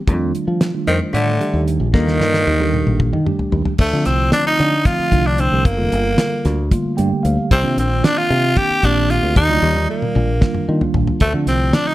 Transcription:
0.07 fingered electric bass F2, tine electric piano D#3 G3 A3 D4 F4, kick, closed hi-hat
0.35 closed hi-hat
0.48 fingered electric bass F3
0.61 snare, closed hi-hat
0.74 tine electric piano D#3 G3 A3 D4 F4
0.87 fingered electric bass F2, tenor saxophone D#3, hollow-body jazz guitar C4, closed hi-hat
1.13 fingered electric bass A2, tenor saxophone D3, hollow-body jazz guitar A3, closed hi-hat
1.40 tine electric piano D#3 G3 A3 D4 G4, closed hi-hat
1.54 fingered electric bass D#2
1.68 closed hi-hat
1.80 fingered electric bass A#1
1.93 fingered electric bass D#2, tine electric piano D#3 G3 D4 F4 A4, tenor saxophone D#3, hollow-body jazz guitar A#3, kick, snare
2.08 snare
2.20 fingered electric bass G2, snare
2.34 snare
2.47 fingered electric bass D#2, high tom
2.59 tine electric piano D#3 G3 D4 G4 A4, high tom
2.74 mid tom
2.86 fingered electric bass A#1, mid tom
3.00 kick, mid tom
3.13 fingered electric bass D#3, mid tom
3.25 tine electric piano D#3 G3 A3 D4 G4, mid tom
3.39 muted fingered electric bass stroke, floor tom
3.52 fingered electric bass D#2, floor tom
3.65 muted fingered electric bass stroke, floor tom
3.78 fingered electric bass D2, tenor saxophone A3, kick, crash
3.92 tine electric piano D3 F3 A3 C4 F4, fingered electric bass D3
4.05 fingered electric bass C2, tenor saxophone C4, snare, closed hi-hat
4.32 tenor saxophone D4, snare, closed hi-hat
4.47 tenor saxophone D#4
4.59 fingered electric bass D3, snare, closed hi-hat
4.85 tine electric piano D3 F3 A3 C4 F4, tenor saxophone F4, kick, snare, closed hi-hat
4.99 muted fingered electric bass stroke
5.11 fingered electric bass C2, tine electric piano D3 F3 A3 C4 D4, kick, closed hi-hat
5.27 tenor saxophone D4
5.38 tenor saxophone C4, closed hi-hat
5.53 fingered electric bass C2
5.65 fingered electric bass G1, tenor saxophone A#3, kick, closed hi-hat
5.77 fingered electric bass F1, tine electric piano D3 G3 A#3 F4 A4
5.92 fingered electric bass G1, closed hi-hat
6.18 snare, closed hi-hat
6.45 fingered electric bass D2, snare, closed hi-hat
6.70 tine electric piano D3 G3 A3 A#3 F4, kick, closed hi-hat
6.85 muted fingered electric bass stroke
6.96 fingered electric bass G2, tine electric piano D3 G3 A3 A#3 G4 G5, closed hi-hat
7.12 muted fingered electric bass stroke
7.23 fingered electric bass D2, tine electric piano F5, closed hi-hat
7.38 muted fingered electric bass stroke
7.51 fingered electric bass C2, tenor saxophone C4, kick, closed hi-hat
7.63 fingered electric bass C3, tine electric piano D#3 A#3 C4 D4 F4
7.77 fingered electric bass A#1, tenor saxophone C4, snare, closed hi-hat
8.04 tenor saxophone D4, snare, closed hi-hat
8.18 tenor saxophone F4
8.30 fingered electric bass C3, closed hi-hat
8.55 tine electric piano D#3 A#3 C4 D4 G4, tenor saxophone G4, kick, closed hi-hat
8.70 muted fingered electric bass stroke
8.83 fingered electric bass A#1, tine electric piano D#3 A#3 C4 D4 G4, tenor saxophone D4, kick, snare, closed hi-hat
9.10 tenor saxophone F4, snare, closed hi-hat
9.23 fingered electric bass D2
9.36 fingered electric bass D#2, tenor saxophone D#4, kick, closed hi-hat
9.49 fingered electric bass D2, tine electric piano D#3 G3 A#3 F4 D5
9.62 fingered electric bass D#2, high tom
9.76 high tom
9.90 tenor saxophone A#3
10.02 mid tom
10.15 fingered electric bass A#1, mid tom
10.41 tine electric piano D#3 G3 A#3 D4 F4, kick, snare
10.54 muted fingered electric bass stroke, mid tom
10.68 tine electric piano D#3 G3 A#3 D4 F4, fingered electric bass D#3
10.81 muted fingered electric bass stroke, floor tom
10.94 fingered electric bass A#1, floor tom
11.07 muted fingered electric bass stroke, floor tom
11.20 fingered electric bass D2, tenor saxophone A3, kick, closed hi-hat
11.34 fingered electric bass D3, tine electric piano D3 F3 A3 C4 F4
11.47 fingered electric bass C2, tenor saxophone C4, snare, closed hi-hat
11.73 tenor saxophone D4, snare, closed hi-hat
11.87 tenor saxophone D#4

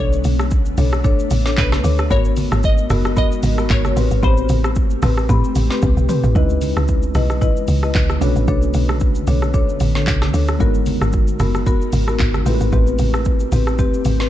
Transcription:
Already playing: ambient pad A3 B3 D4
0.00 log drum bass B1, marimba D4 A4 C#5, synth pluck C#5
0.13 shaker
0.24 log drum bass B1, open hi-hat, high conga, shaker
0.40 cross-stick, shaker
0.51 kick, shaker
0.66 shaker
0.78 log drum bass B1, marimba D4 A4 C#5, open hi-hat, high conga, low conga, shaker
0.93 cross-stick, shaker
1.04 marimba D4 A4 C#5, kick, low conga, shaker
1.20 shaker
1.31 log drum bass A1, open hi-hat, high conga, shaker
1.45 marimba D4 A4 C#5, snare, shaker
1.57 log drum bass B1, synth pluck B4, kick, clap, low conga, shaker
1.72 cross-stick, snare, high conga, shaker
1.84 log drum bass D2, marimba D4 A4 C#5, open hi-hat, high conga, shaker
1.99 cross-stick, shaker
2.11 log drum bass G#1, ambient pad G#3 B3 D#4 F#4 A#4, marimba B3 F#4 A#4, synth pluck C#5, kick, low conga, shaker
2.25 shaker
2.37 open hi-hat, high conga, shaker
2.52 log drum bass G#1, cross-stick, shaker
2.63 synth pluck D#5, kick, shaker
2.78 shaker
2.90 log drum bass F#1, marimba B3 F#4 A#4, cross-stick, open hi-hat, high conga, low conga, shaker
3.05 cross-stick, shaker
3.17 marimba B3 F#4 A#4, synth pluck D#5, kick, low conga, shaker
3.32 shaker
3.43 log drum bass G#1, open hi-hat, high conga, shaker
3.58 marimba B3 F#4 A#4, cross-stick, shaker
3.70 log drum bass G#1, synth pluck C#5, kick, clap, low conga, shaker
3.85 cross-stick, high conga, shaker
3.96 log drum bass A1, ambient pad A3 C4 G4, marimba C4 G4 B4, open hi-hat, high conga, shaker
4.11 log drum bass G#1, shaker
4.23 log drum bass A1, marimba C4 G4 B5, synth pluck C5, kick, low conga, shaker
4.37 shaker
4.49 log drum bass A1, open hi-hat, high conga, shaker
4.64 cross-stick, shaker
4.76 kick, shaker
4.90 shaker
5.02 log drum bass A1, marimba C4 G4 B4, cross-stick, open hi-hat, high conga, low conga, shaker
5.18 cross-stick, shaker
5.29 log drum bass A2, marimba C4 G4 B5, kick, low conga, shaker
5.44 shaker
5.55 log drum bass A1, open hi-hat, high conga, shaker
5.70 marimba C4 G4 B4, snare, shaker
5.82 log drum bass C2, kick, high tom, low conga, shaker
5.97 log drum bass B1, high conga, shaker
6.09 marimba C4 G4 B4, mid tom, open hi-hat, high conga, shaker
6.24 log drum bass A1, floor tom, shaker
6.34 log drum bass C#2, ambient pad C#3 E3 G#3 B3 D#5, tine electric piano G#3 C#4 D#4 E4 B4, marimba E4 B4 D#5, kick, shaker
6.50 shaker
6.61 open hi-hat, high conga, shaker
6.77 log drum bass C#2, cross-stick, shaker
6.88 kick, shaker
7.03 shaker
7.15 log drum bass B1, marimba E4 B4 D#5, cross-stick, open hi-hat, high conga, low conga, shaker
7.30 cross-stick, shaker
7.41 marimba E4 B4 D#5, kick, low conga, shaker
7.57 shaker
7.68 log drum bass C#2, open hi-hat, high conga, shaker
7.83 marimba E4 B4 D#5, cross-stick, shaker
7.95 log drum bass C#2, kick, clap, low conga, shaker
8.10 cross-stick, high conga, shaker
8.20 log drum bass B1, ambient pad D3 A3, tine electric piano A3 C#4 D4 F#4 B4, marimba D4 A4 C#5, open hi-hat, high conga, shaker
8.36 log drum bass A1, shaker
8.48 log drum bass B1, marimba D4 A4 C#5, kick, shaker
8.62 shaker
8.74 log drum bass B1, open hi-hat, high conga, shaker
8.89 cross-stick, shaker
9.00 kick, shaker
9.15 shaker
9.27 log drum bass B1, marimba D4 A4 C#5, open hi-hat, high conga, low conga, shaker
9.42 cross-stick, shaker
9.54 marimba D4 A4 C#5, kick, low conga, shaker
9.69 shaker
9.80 log drum bass A1, open hi-hat, high conga, shaker
9.95 marimba D4 A4 C#5, snare, shaker
10.07 log drum bass B1, kick, clap, low conga, shaker
10.22 cross-stick, snare, high conga, shaker
10.34 log drum bass D2, marimba D4 A4 C#5, open hi-hat, high conga, shaker
10.48 cross-stick, shaker
10.59 log drum bass G#1, tine electric piano G#3 B3 D#4 F#4 A#4, ambient pad G#3 B3 D#4 F#4 A#4, marimba B3 F#4 A#4, kick, shaker
10.75 shaker
10.86 open hi-hat, high conga, shaker
11.01 log drum bass G#1, cross-stick, shaker
11.13 kick, shaker
11.27 shaker
11.40 log drum bass F#1, marimba B3 F#4 A#4, cross-stick, open hi-hat, high conga, low conga, shaker
11.55 cross-stick, shaker
11.66 marimba B3 F#4 A#4, kick, low conga, shaker
11.82 shaker
11.93 log drum bass G#1, open hi-hat, high conga, shaker
12.07 marimba B3 F#4 A#4, cross-stick, shaker
12.19 log drum bass G#1, kick, clap, low conga, shaker
12.34 cross-stick, high conga, shaker
12.45 log drum bass A1, tine electric piano A3 C4 E4 G4 A4, ambient pad A3 C4 G4, marimba C4 G4 B4, open hi-hat, high conga, shaker
12.55 tine electric piano B4
12.61 log drum bass G#1, shaker
12.72 log drum bass A1, marimba C4 G4 B4, kick, low conga, shaker
12.87 shaker
12.99 log drum bass A1, open hi-hat, high conga, shaker
13.14 cross-stick, shaker
13.25 kick, shaker
13.40 shaker
13.52 log drum bass A1, marimba C4 G4 B4, open hi-hat, high conga, low conga, shaker
13.67 cross-stick, shaker
13.79 marimba C4 G4 B4, kick, low conga, shaker
13.94 shaker
14.05 log drum bass G#1, open hi-hat, high conga, shaker
14.20 marimba C4 G4 B4, snare, shaker

